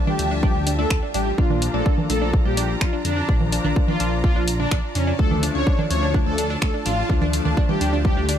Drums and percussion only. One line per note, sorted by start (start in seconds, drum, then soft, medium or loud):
0.07 low conga loud
0.19 open hi-hat medium
0.43 kick loud
0.67 open hi-hat loud
0.90 finger snap loud
0.90 kick loud
1.14 open hi-hat medium
1.38 kick loud
1.50 low conga medium
1.62 open hi-hat loud
1.86 kick loud
1.98 low conga medium
2.10 open hi-hat medium
2.33 kick loud
2.57 open hi-hat loud
2.81 finger snap loud
2.81 kick loud
3.05 open hi-hat loud
3.29 kick loud
3.41 low conga medium
3.52 open hi-hat loud
3.64 low conga medium
3.76 kick loud
3.88 low conga medium
4.00 open hi-hat medium
4.24 kick loud
4.48 open hi-hat loud
4.71 finger snap loud
4.71 kick loud
4.95 open hi-hat medium
5.19 kick loud
5.31 low conga medium
5.43 open hi-hat loud
5.67 kick loud
5.79 low conga medium
5.91 open hi-hat medium
6.14 kick loud
6.38 open hi-hat loud
6.62 finger snap loud
6.62 kick loud
6.86 open hi-hat medium
7.10 kick loud
7.22 low conga medium
7.33 open hi-hat loud
7.45 low conga medium
7.57 kick loud
7.69 low conga medium
7.81 open hi-hat medium
8.05 kick loud
8.29 open hi-hat loud